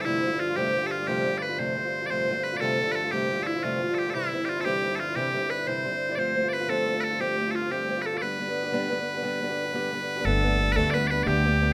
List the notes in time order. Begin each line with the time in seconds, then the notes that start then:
Already playing: G2 D3
0.01 F2 C3 E4 A4
0.06 F3 G3 A3 F4
0.23 F3 G3 A3 F4
0.32 F3 G3 A3 F4
0.40 F4
0.48 F3 G3 A3 F4
0.56 F2 C3 F3 G3 A3 F4 G4
0.74 F3 G3 A3 F4
0.82 F3 G3 A3 F4
0.87 A4
0.91 F4
0.98 F3 G3 A3 F4
1.07 F2 C3 F3 G3 A3 F4 G4
1.25 F3 G3 A3 F4
1.32 F3 G3 A3 F4
1.38 D5
1.42 B4
1.49 F3 G3 A3 F4
1.58 F2 C3 F3 G3 A3 F4 C5
1.76 F3 G3 A3 F4
1.85 F3 G3 A3 F4
2.01 F3 G3 A3 F4
2.06 F2 G2 C3 D3 C5 D5
2.10 F3 G3 A3 F4
2.28 F3 G3 A3 F4
2.36 F3 G3 A3 F4
2.44 B4
2.52 F3 G3 A3 F4
2.57 F2 A4 D5
2.61 C3 F3 G3 A3 F4
2.79 F3 G3 A3 F4
2.87 F3 G3 A3 F4
2.92 A4 B4
3.03 F3 G3 A3 F4
3.11 F2 C3 F3 G3 A3 F4 G4
3.29 F3 G3 A3 F4
3.38 F3 G3 A3 F4
3.43 E4 A4
3.54 F3 G3 A3 F4
3.63 F2 C3 F3 G3 A3 F4
3.80 F3 G3 A3 F4
3.88 F3 G3 A3 F4
3.94 A4
3.99 G4
4.05 F3 G3 A3 F4
4.10 C3 A4
4.14 E3 G3 C4 E4
4.32 E3 G3 C4 E4
4.40 G3 C4 E4
4.45 F4 G4
4.50 F4
4.56 G3 C4 E4
4.61 A4
4.65 C3 E3 G3 C4 E4 G4
4.83 E3 G3 C4 E4
4.91 G3 C4 E4
4.96 F4 A4
5.00 F4
5.08 G3 C4 E4
5.15 C3 E3 G3 C4 E4 G4
5.34 E3 G3 C4 E4
5.42 G3 C4 E4
5.49 B4
5.58 G3 C4 E4
5.67 C3 E3 G3 C4 E4 C5
5.84 E3 G3 C4 E4
5.92 G3 C4 E4
6.09 G3 C4 E4 D5
6.15 F3 A3 C4 F4 C5 D5
6.35 F3 A3 C4 F4
6.43 A3 C4 F4
6.49 D5
6.53 B4
6.59 A3 C4 F4
6.68 F3 A3 C4 F4 A4
6.86 F3 A3 C4 F4
6.94 A3 C4 F4
7.01 A4 B4
7.10 A3 C4 F4
7.20 F3 A3 C4 F4 G4
7.38 F3 A3 C4 F4
7.46 A3 C4 F4
7.51 F4 A4
7.55 F4
7.62 A3 C4 F4
7.70 F3 A3 C4 F4 G4
7.88 F3 A3 C4 F4
7.97 A3 C4 F4
8.02 A4 B4
8.06 A4
8.13 A3 C4 F4
8.18 D5
8.22 G3 B3 D4 G4 B4
8.39 G3 B3 D4 G4
8.48 B3 D4 G4
8.63 B3 D4 G4
8.72 G3 B3 D4 G4
8.89 G3 B3 D4 G4
8.98 B3 D4 G4
9.14 B3 D4 G4
9.23 G3 B3 D4 G4
9.41 G3 B3 D4 G4
9.49 B3 D4 G4
9.65 B3 D4 G4
9.73 G3 B3 D4 G4
9.91 G3 B3 D4 G4
10.00 B3 D4 G4
10.16 B3 D4 G4
10.25 G1 G2 D3 G3 A3 B3 D4 A4
10.43 G3 A3 B3 D4
10.59 G3 A3 B3 D4
10.72 D2 G2 A4 B4
10.76 D3 G3 A3 B3 D4 A4
10.90 G3 B4 D5
10.95 A3 B3 D4
11.07 G3 B3 B4 D5
11.12 A3 D4
11.23 D2 G2 D3 G4 D5
11.27 G3 A3 B3 D4 G4
11.44 G3 A3 B3 D4
11.60 G3 A3 B3 D4